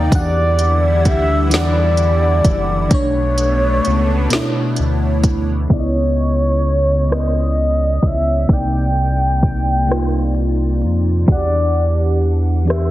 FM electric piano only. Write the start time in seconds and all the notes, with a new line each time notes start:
Already playing: C3 A#3 D#4 D5 F5 G5 A#5
0.10 E3 D4 F#4
0.15 F#5
0.20 G4
1.49 E3 D4 G4
1.54 F#5
2.89 B2 A3 D4
2.94 C#5
4.29 B2 A3 D4
4.34 E4
5.68 C#3 B3 E4
5.73 D5
5.80 D#5
7.08 C#3 B3 E4
7.13 D5
7.20 C#5
8.47 C3 A#3 D#4
8.53 D5
9.87 C3 A#3 D#4
9.92 F4
11.26 E3 D4 F#4
11.32 F#5
11.37 G4
12.65 E3 D4 G4
12.70 E5